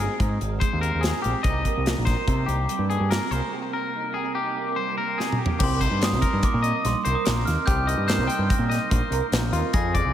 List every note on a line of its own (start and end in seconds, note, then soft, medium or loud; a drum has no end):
0.00 1.00 G#2 medium
0.00 0.40 C4 soft
0.00 0.19 D#4 medium
0.00 0.19 G#4 medium
0.00 1.02 G#4 soft
0.19 0.37 G#2 medium
0.19 1.48 D#4 soft
0.19 kick medium
0.19 closed hi-hat medium
0.41 0.58 G#1 medium
0.41 0.81 C4 soft
0.41 closed hi-hat soft
0.60 1.41 G#3 medium
0.60 0.81 C5 medium
0.60 kick medium
0.60 closed hi-hat medium
0.73 0.90 D#2 medium
0.81 1.25 C4 soft
0.81 1.02 A#4 medium
0.81 closed hi-hat medium
0.95 1.11 D#2 medium
1.01 1.41 G#2 medium
1.01 1.13 G4 soft
1.01 1.22 G#4 medium
1.01 snare medium
1.01 closed hi-hat medium
1.13 1.44 A#4 soft
1.22 1.33 A#1 medium
1.22 1.47 C4 medium
1.22 1.44 G4 medium
1.22 closed hi-hat medium
1.43 1.62 C2 medium
1.43 3.11 C3 medium
1.43 2.70 G3 soft
1.43 1.85 D#5 medium
1.43 kick medium
1.43 closed hi-hat medium
1.48 1.66 A#3 medium
1.48 1.87 D#4 medium
1.48 2.09 A#4 medium
1.65 2.49 A#3 medium
1.65 kick medium
1.65 closed hi-hat medium
1.77 1.94 C2 medium
1.86 2.28 D#4 soft
1.86 snare loud
1.86 closed hi-hat medium
1.98 2.15 A#1 medium
2.05 2.47 C5 medium
2.05 kick medium
2.05 snare soft
2.05 closed hi-hat medium
2.09 3.12 A#4 medium
2.28 2.45 C3 medium
2.28 3.96 D#4 medium
2.28 kick medium
2.28 closed hi-hat medium
2.46 2.66 C2 medium
2.46 2.90 A#3 soft
2.46 2.89 G4 medium
2.46 closed hi-hat medium
2.69 4.77 G3 medium
2.69 closed hi-hat medium
2.79 2.97 G2 medium
2.90 3.34 A#3 medium
2.90 3.10 G#4 medium
2.90 closed hi-hat soft
3.00 3.18 G2 medium
3.11 3.52 C3 medium
3.11 3.31 A#4 medium
3.11 3.53 A#4 soft
3.11 snare loud
3.11 closed hi-hat medium
3.31 3.40 C2 medium
3.31 3.73 A#3 medium
3.31 3.73 C5 medium
3.31 closed hi-hat medium
3.52 5.18 C3 medium
3.52 3.63 G4 medium
3.63 4.14 A#4 medium
3.73 4.56 A#3 medium
3.73 4.15 A#4 medium
3.96 4.35 D#4 soft
4.14 4.25 G4 soft
4.14 4.35 G#4 medium
4.25 5.18 A#4 soft
4.35 5.58 D#4 medium
4.35 4.77 G4 medium
4.57 4.97 A#3 medium
4.76 5.58 G3 medium
4.76 4.97 C5 medium
4.98 5.40 A#3 medium
4.98 5.18 A#4 medium
5.18 5.58 C3 medium
5.18 5.30 G4 soft
5.18 5.39 G#4 medium
5.18 snare soft
5.30 5.60 A#4 soft
5.30 mid tom medium
5.39 6.41 A#3 medium
5.39 5.58 G4 medium
5.46 floor tom medium
5.59 5.86 C2 loud
5.59 6.84 C3 medium
5.59 5.80 G4 medium
5.59 kick loud
5.59 crash loud
5.63 6.00 C6 medium
5.81 6.21 D#4 medium
5.81 6.21 C5 medium
5.81 kick medium
5.81 closed hi-hat medium
5.91 6.14 G2 medium
6.00 6.11 G4 medium
6.00 6.45 D#6 medium
6.00 snare loud
6.00 closed hi-hat medium
6.11 6.21 C2 loud
6.11 7.04 A#4 medium
6.21 7.64 G3 medium
6.21 6.63 D#4 medium
6.21 6.62 A#4 medium
6.21 kick medium
6.21 closed hi-hat medium
6.33 6.42 G2 medium
6.43 6.84 A#3 medium
6.43 6.82 D6 medium
6.43 kick medium
6.43 closed hi-hat medium
6.54 6.71 A#2 medium
6.62 7.47 D#4 medium
6.62 7.05 D#5 medium
6.62 closed hi-hat medium
6.84 6.93 A#1 loud
6.84 7.26 G2 medium
6.84 8.49 A#3 medium
6.84 7.17 C6 medium
6.84 snare soft
6.84 closed hi-hat medium
7.05 7.14 C2 medium
7.05 7.65 A#4 medium
7.05 7.25 C5 medium
7.05 closed hi-hat medium
7.15 7.47 D#6 medium
7.25 7.44 A#1 medium
7.25 7.66 C3 medium
7.25 7.67 A#4 medium
7.25 snare loud
7.25 closed hi-hat medium
7.45 7.56 D#2 medium
7.45 7.87 D#4 medium
7.45 7.65 F6 medium
7.45 snare soft
7.45 closed hi-hat medium
7.66 7.94 C2 loud
7.66 8.92 C3 medium
7.66 7.88 G4 medium
7.66 8.07 G6 loud
7.66 kick loud
7.66 closed hi-hat medium
7.87 8.30 D#4 medium
7.87 8.08 D#5 medium
7.87 closed hi-hat medium
7.97 8.19 G2 medium
8.08 9.12 A#4 medium
8.08 8.29 C5 medium
8.08 8.51 G6 medium
8.08 snare loud
8.08 closed hi-hat medium
8.18 8.27 C2 medium
8.27 9.72 G3 medium
8.27 8.70 D#4 medium
8.27 8.69 G5 medium
8.27 closed hi-hat medium
8.39 8.48 G2 medium
8.50 8.89 A#3 medium
8.50 9.29 A#6 medium
8.50 kick loud
8.50 closed hi-hat medium
8.59 8.77 A#2 medium
8.70 9.54 D#4 medium
8.70 8.90 D#5 medium
8.70 snare soft
8.70 closed hi-hat medium
8.90 9.00 A#1 loud
8.90 9.32 G2 medium
8.90 9.74 A#3 medium
8.90 9.32 C5 medium
8.90 kick loud
8.90 closed hi-hat medium
9.10 9.20 C2 medium
9.10 9.72 A#4 medium
9.10 closed hi-hat medium
9.32 9.50 A#1 medium
9.32 9.75 C3 medium
9.32 snare loud
9.32 closed hi-hat medium
9.52 9.61 D#2 medium
9.52 9.76 D#4 medium
9.52 9.74 F4 medium
9.52 closed hi-hat medium
9.73 10.00 F2 loud
9.73 10.13 F3 medium
9.73 9.95 G#4 medium
9.73 10.13 A#6 loud
9.73 kick loud
9.73 closed hi-hat medium
9.94 10.13 G#4 medium
9.94 10.13 D5 medium
9.94 kick medium
9.94 closed hi-hat medium
10.05 10.13 C2 medium